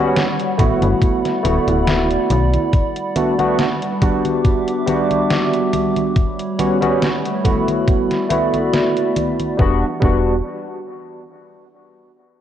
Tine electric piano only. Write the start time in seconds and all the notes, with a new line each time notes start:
Already playing: G3 B3 C#4 F#4
0.58 A3 B3 E4 F#4
1.43 A3 B3 E4 F#4
3.16 A3 B3 D4 F#4
3.38 A3 B3 D4 F#4
4.01 G3 B3 D4 F#4
4.86 G3 B3 D4 F#4
6.58 G3 B3 C#4 F#4
6.81 G3 B3 C#4 F#4
7.44 A3 B3 E4 F#4
8.29 A3 B3 E4 F#4
9.57 G3 B3 D4
9.61 F#4
10.00 G3 B3 D4
10.04 F#4